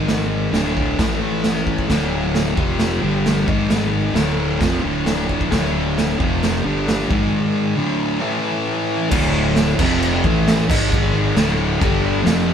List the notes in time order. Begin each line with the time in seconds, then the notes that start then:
Already playing: G#1 G#2 D#3 G#3
0.08 snare, crash
0.53 D1 D2 A2 D3, snare, crash
0.77 kick
0.99 A1 A2 E3 A3, kick, snare, crash
1.44 snare, crash
1.67 kick
1.79 kick
1.89 D1 D2 A2 D3, kick, snare, crash
2.35 snare, crash
2.56 F1 F2 C3 F3, kick
2.79 snare, crash
3.02 G1 G2 D3 G3
3.26 snare, crash
3.47 G#1 G#2 D#3 G#3, kick
3.70 snare, crash
4.14 D1 D2 A2 D3, snare, crash
4.60 F1 F2 C3 F3, kick, snare, crash
4.82 D1 D2 A2 D3
5.06 snare, crash
5.29 kick
5.41 kick
5.51 D1 D2 A2 D3, kick, snare, crash
5.98 snare, crash
6.19 F1 F2 C3 F3, kick
6.43 snare, crash
6.65 G1 G2 D3 G3
6.88 snare, crash
7.10 G#1 G#2 D#3 G#3, kick
7.76 D2 A2 D3
8.20 A2 E3 A3
9.09 D1 D2 A2 D3, kick, crash
9.56 snare, crash
9.79 F1 F2 C3 F3, kick, crash
10.02 crash
10.24 A1 A2 E3 A3, kick
10.48 snare, crash
10.69 G#1 G#2 D#3 G#3, kick, crash
10.92 kick, crash
11.36 D1 D2 A2 D3, snare, crash
11.80 G1 G2 D3 G3, kick, crash
12.24 F1 F2 C3 F3, snare, crash